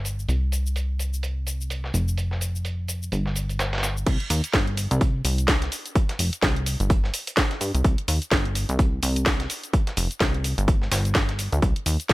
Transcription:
Already playing: analog synth bass G1
0.05 closed hi-hat, cabasa
0.19 cabasa
0.29 analog synth bass C2, closed hi-hat, cabasa
0.52 closed hi-hat, cabasa
0.66 cabasa
0.76 closed hi-hat, cabasa
0.99 closed hi-hat, cabasa
1.14 cabasa
1.23 closed hi-hat, cabasa
1.47 closed hi-hat, cabasa
1.61 cabasa
1.70 closed hi-hat, cabasa
1.84 snare
1.94 analog synth bass F1, closed hi-hat, cabasa
2.08 cabasa
2.18 closed hi-hat, cabasa
2.31 snare
2.41 closed hi-hat, cabasa
2.55 cabasa
2.65 closed hi-hat, cabasa
2.88 closed hi-hat, cabasa
3.03 cabasa
3.12 analog synth bass G1, closed hi-hat, cabasa
3.26 snare
3.36 closed hi-hat, cabasa
3.49 closed hi-hat, cabasa
3.59 snare, closed hi-hat, cabasa
3.73 snare, closed hi-hat
3.78 snare, closed hi-hat
3.83 snare, closed hi-hat, cabasa
3.97 cabasa
4.07 analog synth bass C2, kick, closed hi-hat, crash, cabasa
4.20 closed hi-hat
4.30 analog synth bass D#2, closed hi-hat, open hi-hat, cabasa
4.44 closed hi-hat, cabasa
4.54 analog synth bass G1, kick, snare, closed hi-hat, cabasa
4.67 closed hi-hat
4.77 closed hi-hat, open hi-hat, cabasa
4.91 analog synth bass C2, closed hi-hat, cabasa
5.01 kick, closed hi-hat, cabasa
5.25 analog synth bass C2, closed hi-hat, open hi-hat, cabasa
5.38 closed hi-hat, cabasa
5.48 kick, snare, closed hi-hat, cabasa
5.62 snare, closed hi-hat
5.72 closed hi-hat, open hi-hat, cabasa
5.86 closed hi-hat, cabasa
5.96 kick, closed hi-hat, cabasa
6.09 snare, closed hi-hat
6.19 analog synth bass F1, closed hi-hat, open hi-hat, cabasa
6.33 closed hi-hat, cabasa
6.42 analog synth bass C2, kick, snare, closed hi-hat, cabasa
6.56 closed hi-hat
6.66 closed hi-hat, open hi-hat, cabasa
6.80 analog synth bass G1, closed hi-hat, cabasa
6.90 kick, closed hi-hat, cabasa
7.04 snare
7.14 closed hi-hat, open hi-hat, cabasa
7.27 closed hi-hat, cabasa
7.37 kick, snare, closed hi-hat, cabasa
7.51 snare, closed hi-hat
7.61 analog synth bass G2, closed hi-hat, open hi-hat, cabasa
7.74 analog synth bass C2, closed hi-hat, cabasa
7.84 analog synth bass C2, kick, closed hi-hat, cabasa
7.98 closed hi-hat
8.08 analog synth bass D#2, closed hi-hat, open hi-hat, cabasa
8.22 closed hi-hat, cabasa
8.31 analog synth bass G1, kick, snare, closed hi-hat, cabasa
8.45 closed hi-hat
8.55 closed hi-hat, open hi-hat, cabasa
8.69 analog synth bass C2, closed hi-hat, cabasa
8.79 kick, closed hi-hat, cabasa
9.03 analog synth bass C2, closed hi-hat, open hi-hat, cabasa
9.16 closed hi-hat, cabasa
9.26 kick, snare, closed hi-hat, cabasa
9.40 snare, closed hi-hat
9.50 closed hi-hat, open hi-hat, cabasa
9.64 closed hi-hat, cabasa
9.73 kick, closed hi-hat, cabasa
9.87 snare, closed hi-hat
9.97 analog synth bass F1, closed hi-hat, open hi-hat, cabasa
10.11 closed hi-hat, cabasa
10.20 analog synth bass C2, kick, snare, closed hi-hat, cabasa
10.34 closed hi-hat
10.44 closed hi-hat, open hi-hat, cabasa
10.58 analog synth bass G1, closed hi-hat, cabasa
10.68 kick, closed hi-hat, cabasa
10.82 snare
10.92 analog synth bass G1, snare, closed hi-hat, open hi-hat, cabasa
11.05 closed hi-hat, cabasa
11.15 kick, snare, closed hi-hat, cabasa
11.29 snare, closed hi-hat
11.39 closed hi-hat, open hi-hat, cabasa
11.52 analog synth bass D2, closed hi-hat, cabasa
11.62 analog synth bass C2, kick, closed hi-hat, cabasa
11.76 closed hi-hat
11.86 analog synth bass D#2, closed hi-hat, open hi-hat, cabasa
12.00 closed hi-hat, cabasa
12.09 analog synth bass G1, kick, snare, closed hi-hat

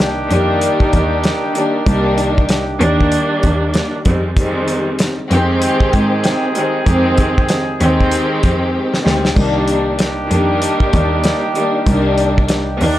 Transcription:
Already playing: cello C2, horn section D#3 D4 G4, string section D4
0.00 snare
0.28 cello F2, string section D#3 G3 A#3 D4, closed hi-hat
0.61 closed hi-hat
0.80 kick
0.93 cello D#2, kick, closed hi-hat
1.24 snare, closed hi-hat
1.53 string section D#3 G3 A#3 D4, closed hi-hat
1.86 cello C2, string section D#3 G3 A#3 D4, kick, closed hi-hat
2.18 closed hi-hat
2.38 kick
2.49 snare, closed hi-hat
2.78 cello D#2, string section D#3 G3 A#3 D4, closed hi-hat
3.01 kick
3.12 closed hi-hat
3.43 cello D#2, kick, closed hi-hat
3.74 snare, closed hi-hat
4.05 cello F2, string section D#3 G3 G#3 C4, kick, closed hi-hat
4.36 string section D#3 G3 G#3 C4, kick, closed hi-hat
4.68 closed hi-hat
4.99 snare, closed hi-hat
5.30 cello F2, string section D#3 G#3 C4 G4, horn section D#3 C4 G#4, closed hi-hat
5.62 closed hi-hat
5.80 kick
5.93 cello G#2, kick, closed hi-hat
6.24 snare, closed hi-hat
6.55 string section D#3 G3 G#3 C4, closed hi-hat
6.85 cello F2, string section D#3 G#3 C4 G4, kick, closed hi-hat
7.17 kick, closed hi-hat
7.38 kick
7.49 snare, closed hi-hat
7.80 cello D#2, string section D#3 G#3 C4 G4, closed hi-hat
8.00 kick
8.12 closed hi-hat
8.43 cello F2, kick, closed hi-hat
8.94 snare
9.03 cello D2, string section D#3 G3 G#3 C4, snare
9.25 snare
9.35 cello C2, string section D#3 G3 A#3 D4, horn section D#3 D4 G4, kick, splash
9.68 closed hi-hat
9.99 snare, closed hi-hat
10.29 cello F2, string section D#3 G3 A#3 D4, closed hi-hat
10.62 closed hi-hat
10.80 kick
10.93 cello D#2, kick, closed hi-hat
11.24 snare, closed hi-hat
11.54 string section D#3 G3 A#3 D4, closed hi-hat
11.86 cello C2, string section D#3 G3 A#3 D4, kick, closed hi-hat
12.18 closed hi-hat
12.38 kick
12.48 snare, closed hi-hat
12.78 cello D#2, string section D#3 G3 A#3 D4, open hi-hat

